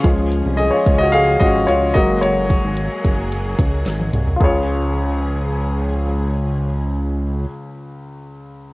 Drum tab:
HH |x-x-x-x-x-x-x-x-|x-x-x-x-x-x-x-x-|----------------|----------------|
SD |----------------|------------o---|----------------|----------------|
T1 |----------------|-------------o--|----------------|----------------|
T2 |----------------|--------------o-|----------------|----------------|
FT |----------------|---------------o|o---------------|----------------|
BD |o-----o---o---o-|--o---o---o-----|o---------------|----------------|